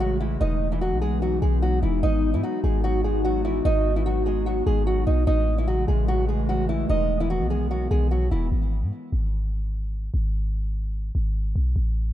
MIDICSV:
0, 0, Header, 1, 4, 480
1, 0, Start_track
1, 0, Tempo, 405405
1, 483, Time_signature, 4, 2, 24, 8
1, 14362, End_track
2, 0, Start_track
2, 0, Title_t, "Steel-string acoustic guitar"
2, 0, Program_c, 0, 25
2, 2, Note_on_c, 0, 66, 92
2, 12, Note_on_c, 0, 54, 75
2, 189, Note_off_c, 0, 66, 0
2, 195, Note_off_c, 0, 54, 0
2, 241, Note_on_c, 0, 64, 83
2, 251, Note_on_c, 0, 52, 62
2, 428, Note_off_c, 0, 64, 0
2, 434, Note_off_c, 0, 52, 0
2, 480, Note_on_c, 0, 63, 101
2, 490, Note_on_c, 0, 75, 84
2, 827, Note_off_c, 0, 63, 0
2, 832, Note_off_c, 0, 75, 0
2, 849, Note_on_c, 0, 64, 78
2, 859, Note_on_c, 0, 52, 68
2, 937, Note_off_c, 0, 64, 0
2, 943, Note_off_c, 0, 52, 0
2, 963, Note_on_c, 0, 66, 86
2, 973, Note_on_c, 0, 54, 71
2, 1149, Note_off_c, 0, 66, 0
2, 1155, Note_off_c, 0, 54, 0
2, 1202, Note_on_c, 0, 68, 90
2, 1211, Note_on_c, 0, 56, 65
2, 1388, Note_off_c, 0, 68, 0
2, 1394, Note_off_c, 0, 56, 0
2, 1444, Note_on_c, 0, 66, 92
2, 1453, Note_on_c, 0, 54, 64
2, 1630, Note_off_c, 0, 66, 0
2, 1635, Note_off_c, 0, 54, 0
2, 1681, Note_on_c, 0, 68, 83
2, 1690, Note_on_c, 0, 56, 63
2, 1868, Note_off_c, 0, 68, 0
2, 1874, Note_off_c, 0, 56, 0
2, 1923, Note_on_c, 0, 66, 83
2, 1932, Note_on_c, 0, 54, 62
2, 2109, Note_off_c, 0, 66, 0
2, 2115, Note_off_c, 0, 54, 0
2, 2162, Note_on_c, 0, 64, 74
2, 2171, Note_on_c, 0, 52, 68
2, 2348, Note_off_c, 0, 64, 0
2, 2354, Note_off_c, 0, 52, 0
2, 2403, Note_on_c, 0, 63, 101
2, 2413, Note_on_c, 0, 75, 75
2, 2748, Note_off_c, 0, 63, 0
2, 2753, Note_off_c, 0, 75, 0
2, 2769, Note_on_c, 0, 64, 77
2, 2778, Note_on_c, 0, 52, 63
2, 2857, Note_off_c, 0, 64, 0
2, 2863, Note_off_c, 0, 52, 0
2, 2882, Note_on_c, 0, 66, 82
2, 2891, Note_on_c, 0, 54, 68
2, 3068, Note_off_c, 0, 66, 0
2, 3074, Note_off_c, 0, 54, 0
2, 3122, Note_on_c, 0, 68, 80
2, 3131, Note_on_c, 0, 56, 58
2, 3308, Note_off_c, 0, 68, 0
2, 3314, Note_off_c, 0, 56, 0
2, 3361, Note_on_c, 0, 66, 99
2, 3370, Note_on_c, 0, 54, 82
2, 3548, Note_off_c, 0, 66, 0
2, 3554, Note_off_c, 0, 54, 0
2, 3603, Note_on_c, 0, 68, 81
2, 3613, Note_on_c, 0, 56, 61
2, 3789, Note_off_c, 0, 68, 0
2, 3795, Note_off_c, 0, 56, 0
2, 3843, Note_on_c, 0, 66, 101
2, 3853, Note_on_c, 0, 54, 74
2, 4029, Note_off_c, 0, 66, 0
2, 4035, Note_off_c, 0, 54, 0
2, 4081, Note_on_c, 0, 64, 80
2, 4091, Note_on_c, 0, 52, 61
2, 4268, Note_off_c, 0, 64, 0
2, 4274, Note_off_c, 0, 52, 0
2, 4322, Note_on_c, 0, 63, 107
2, 4332, Note_on_c, 0, 75, 82
2, 4668, Note_off_c, 0, 63, 0
2, 4673, Note_off_c, 0, 75, 0
2, 4691, Note_on_c, 0, 64, 77
2, 4700, Note_on_c, 0, 52, 62
2, 4778, Note_off_c, 0, 64, 0
2, 4784, Note_off_c, 0, 52, 0
2, 4805, Note_on_c, 0, 66, 85
2, 4814, Note_on_c, 0, 54, 68
2, 4990, Note_off_c, 0, 66, 0
2, 4996, Note_off_c, 0, 54, 0
2, 5042, Note_on_c, 0, 68, 78
2, 5052, Note_on_c, 0, 56, 67
2, 5229, Note_off_c, 0, 68, 0
2, 5235, Note_off_c, 0, 56, 0
2, 5282, Note_on_c, 0, 66, 84
2, 5292, Note_on_c, 0, 54, 71
2, 5469, Note_off_c, 0, 66, 0
2, 5474, Note_off_c, 0, 54, 0
2, 5523, Note_on_c, 0, 68, 86
2, 5532, Note_on_c, 0, 56, 64
2, 5709, Note_off_c, 0, 68, 0
2, 5715, Note_off_c, 0, 56, 0
2, 5762, Note_on_c, 0, 66, 87
2, 5772, Note_on_c, 0, 54, 65
2, 5949, Note_off_c, 0, 66, 0
2, 5955, Note_off_c, 0, 54, 0
2, 5999, Note_on_c, 0, 63, 80
2, 6009, Note_on_c, 0, 75, 58
2, 6187, Note_off_c, 0, 63, 0
2, 6193, Note_off_c, 0, 75, 0
2, 6240, Note_on_c, 0, 63, 105
2, 6249, Note_on_c, 0, 75, 75
2, 6586, Note_off_c, 0, 63, 0
2, 6591, Note_off_c, 0, 75, 0
2, 6610, Note_on_c, 0, 64, 75
2, 6619, Note_on_c, 0, 52, 64
2, 6697, Note_off_c, 0, 64, 0
2, 6703, Note_off_c, 0, 52, 0
2, 6719, Note_on_c, 0, 66, 91
2, 6729, Note_on_c, 0, 54, 64
2, 6907, Note_off_c, 0, 66, 0
2, 6913, Note_off_c, 0, 54, 0
2, 6962, Note_on_c, 0, 68, 82
2, 6972, Note_on_c, 0, 56, 65
2, 7148, Note_off_c, 0, 68, 0
2, 7154, Note_off_c, 0, 56, 0
2, 7202, Note_on_c, 0, 66, 107
2, 7211, Note_on_c, 0, 54, 71
2, 7388, Note_off_c, 0, 66, 0
2, 7394, Note_off_c, 0, 54, 0
2, 7443, Note_on_c, 0, 68, 81
2, 7453, Note_on_c, 0, 56, 53
2, 7629, Note_off_c, 0, 68, 0
2, 7635, Note_off_c, 0, 56, 0
2, 7684, Note_on_c, 0, 66, 95
2, 7692, Note_on_c, 0, 54, 74
2, 7869, Note_off_c, 0, 66, 0
2, 7875, Note_off_c, 0, 54, 0
2, 7921, Note_on_c, 0, 64, 84
2, 7931, Note_on_c, 0, 52, 60
2, 8108, Note_off_c, 0, 64, 0
2, 8114, Note_off_c, 0, 52, 0
2, 8162, Note_on_c, 0, 63, 102
2, 8171, Note_on_c, 0, 75, 82
2, 8507, Note_off_c, 0, 63, 0
2, 8512, Note_off_c, 0, 75, 0
2, 8528, Note_on_c, 0, 64, 80
2, 8538, Note_on_c, 0, 52, 68
2, 8616, Note_off_c, 0, 64, 0
2, 8622, Note_off_c, 0, 52, 0
2, 8643, Note_on_c, 0, 66, 90
2, 8653, Note_on_c, 0, 54, 68
2, 8829, Note_off_c, 0, 66, 0
2, 8835, Note_off_c, 0, 54, 0
2, 8882, Note_on_c, 0, 68, 88
2, 8891, Note_on_c, 0, 56, 67
2, 9069, Note_off_c, 0, 68, 0
2, 9074, Note_off_c, 0, 56, 0
2, 9125, Note_on_c, 0, 66, 93
2, 9134, Note_on_c, 0, 54, 65
2, 9310, Note_off_c, 0, 66, 0
2, 9316, Note_off_c, 0, 54, 0
2, 9363, Note_on_c, 0, 68, 82
2, 9372, Note_on_c, 0, 56, 66
2, 9549, Note_off_c, 0, 68, 0
2, 9554, Note_off_c, 0, 56, 0
2, 9603, Note_on_c, 0, 66, 82
2, 9612, Note_on_c, 0, 54, 63
2, 9789, Note_off_c, 0, 66, 0
2, 9795, Note_off_c, 0, 54, 0
2, 9843, Note_on_c, 0, 64, 77
2, 9852, Note_on_c, 0, 52, 66
2, 10029, Note_off_c, 0, 64, 0
2, 10035, Note_off_c, 0, 52, 0
2, 14362, End_track
3, 0, Start_track
3, 0, Title_t, "Ambient pad"
3, 0, Program_c, 1, 92
3, 0, Note_on_c, 1, 49, 79
3, 0, Note_on_c, 1, 52, 84
3, 0, Note_on_c, 1, 56, 73
3, 0, Note_on_c, 1, 57, 72
3, 463, Note_off_c, 1, 49, 0
3, 463, Note_off_c, 1, 52, 0
3, 463, Note_off_c, 1, 57, 0
3, 481, Note_on_c, 1, 59, 72
3, 481, Note_on_c, 1, 63, 79
3, 482, Note_on_c, 1, 52, 88
3, 2383, Note_off_c, 1, 52, 0
3, 2401, Note_on_c, 1, 66, 90
3, 6195, Note_off_c, 1, 59, 0
3, 6195, Note_off_c, 1, 63, 0
3, 6196, Note_off_c, 1, 56, 0
3, 6204, Note_off_c, 1, 66, 0
3, 6239, Note_on_c, 1, 57, 73
3, 6240, Note_on_c, 1, 49, 78
3, 6240, Note_on_c, 1, 52, 90
3, 6240, Note_on_c, 1, 56, 69
3, 8142, Note_off_c, 1, 49, 0
3, 8142, Note_off_c, 1, 57, 0
3, 8162, Note_on_c, 1, 51, 78
3, 8162, Note_on_c, 1, 59, 72
3, 10043, Note_off_c, 1, 52, 0
3, 10043, Note_off_c, 1, 56, 0
3, 10063, Note_off_c, 1, 51, 0
3, 10063, Note_off_c, 1, 59, 0
3, 14362, End_track
4, 0, Start_track
4, 0, Title_t, "808-style bass"
4, 0, Program_c, 2, 38
4, 0, Note_on_c, 2, 33, 110
4, 435, Note_off_c, 2, 33, 0
4, 483, Note_on_c, 2, 28, 109
4, 1090, Note_on_c, 2, 35, 101
4, 1107, Note_off_c, 2, 28, 0
4, 1653, Note_off_c, 2, 35, 0
4, 1683, Note_on_c, 2, 35, 106
4, 2144, Note_off_c, 2, 35, 0
4, 2163, Note_on_c, 2, 28, 109
4, 2393, Note_off_c, 2, 28, 0
4, 2403, Note_on_c, 2, 32, 110
4, 2770, Note_on_c, 2, 44, 98
4, 2788, Note_off_c, 2, 32, 0
4, 2877, Note_off_c, 2, 44, 0
4, 3122, Note_on_c, 2, 32, 106
4, 4275, Note_off_c, 2, 32, 0
4, 4322, Note_on_c, 2, 32, 113
4, 5475, Note_off_c, 2, 32, 0
4, 5523, Note_on_c, 2, 32, 108
4, 5983, Note_off_c, 2, 32, 0
4, 6002, Note_on_c, 2, 35, 111
4, 6233, Note_off_c, 2, 35, 0
4, 6243, Note_on_c, 2, 33, 114
4, 6934, Note_off_c, 2, 33, 0
4, 6963, Note_on_c, 2, 33, 109
4, 8115, Note_off_c, 2, 33, 0
4, 8163, Note_on_c, 2, 28, 109
4, 8770, Note_on_c, 2, 35, 101
4, 8788, Note_off_c, 2, 28, 0
4, 9333, Note_off_c, 2, 35, 0
4, 9362, Note_on_c, 2, 35, 108
4, 9823, Note_off_c, 2, 35, 0
4, 9844, Note_on_c, 2, 28, 107
4, 10074, Note_off_c, 2, 28, 0
4, 10084, Note_on_c, 2, 32, 104
4, 10451, Note_on_c, 2, 44, 97
4, 10469, Note_off_c, 2, 32, 0
4, 10558, Note_off_c, 2, 44, 0
4, 10803, Note_on_c, 2, 32, 101
4, 11956, Note_off_c, 2, 32, 0
4, 12002, Note_on_c, 2, 32, 111
4, 13155, Note_off_c, 2, 32, 0
4, 13201, Note_on_c, 2, 32, 104
4, 13663, Note_off_c, 2, 32, 0
4, 13682, Note_on_c, 2, 35, 106
4, 13913, Note_off_c, 2, 35, 0
4, 13922, Note_on_c, 2, 33, 106
4, 14362, Note_off_c, 2, 33, 0
4, 14362, End_track
0, 0, End_of_file